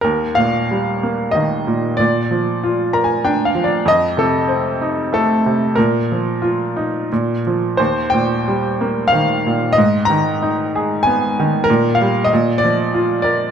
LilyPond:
<<
  \new Staff \with { instrumentName = "Upright piano" } { \time 3/4 \key ees \major \tempo 4 = 94 << { r2. | r4 \tuplet 3/2 { r8. bes''16 aes''8 g''8 f''8 d''8 } | r2. | r2. |
r2. | r2. | r2. | } \\ { bes'8 f''4. ees''4 | d''2~ d''8 r8 | ees''8 a'4. a'4 | bes'2~ bes'8 r8 |
c''8 g''4. f''4 | ees''8 bes''4. aes''4 | bes'8 f''8 ees''8 d''4 d''8 | } >> }
  \new Staff \with { instrumentName = "Upright piano" } { \clef bass \time 3/4 \key ees \major ees,8 bes,8 g8 bes8 ees8 bes,8 | bes,8 f8 f'8 bes'8 d'8 f8 | f,8 c8 c'8 ees'8 a8 c8 | bes,8 f8 f'8 ees'8 bes,8 f8 |
ees,8 bes,8 g8 bes8 ees8 bes,8 | aes,8 ees8 ees'8 aes'8 ces'8 ees8 | bes,8 g8 bes,8 f8 f'8 bes'8 | }
>>